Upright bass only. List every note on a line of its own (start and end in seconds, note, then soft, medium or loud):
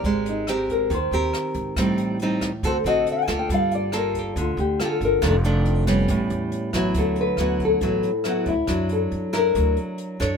0.04 0.86 G#1 medium
0.91 1.10 D#2 medium
1.11 1.31 D#2 medium
1.55 1.75 G#1 medium
1.76 2.59 A1 medium
2.63 2.83 D2 loud
2.84 3.04 A1 medium
3.28 3.48 D2 medium
3.49 4.31 G1 medium
4.36 4.56 D2 loud
4.57 4.77 D2 loud
5.01 5.20 G1 medium
5.22 6.04 F1 loud
6.09 6.29 A1 loud
6.30 6.50 E2 medium
6.74 6.93 A1 medium
6.95 7.35 D2 medium
7.37 7.78 D2 medium
7.81 8.01 A1 medium
8.46 8.66 D2 medium
8.68 9.08 F#2 medium
9.12 9.52 F#2 medium
9.55 9.75 D2 medium
10.21 10.37 F#2 medium